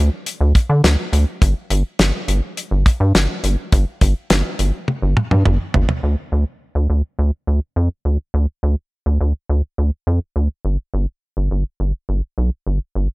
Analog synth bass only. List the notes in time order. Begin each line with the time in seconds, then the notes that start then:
0.41 D2
0.70 D3
0.84 D2
1.13 D2
1.42 G1
1.70 G1
1.99 G1
2.28 G1
2.71 G1
3.00 G2
3.15 G1
3.44 G1
3.73 G1
4.01 G1
4.30 G1
4.59 G1
5.02 G1
5.31 G2
5.46 G1
5.75 G1
6.03 D2
6.32 D2
6.75 D2
6.90 D2
7.19 D2
7.47 D2
7.76 F2
8.05 D2
8.34 D2
8.63 D2
9.06 D2
9.21 D2
9.49 D2
9.78 D2
10.07 F2
10.36 D2
10.65 G1
10.94 G1
11.37 G1
11.51 G1
11.80 G1
12.09 G1
12.38 B1
12.67 G1
12.95 G1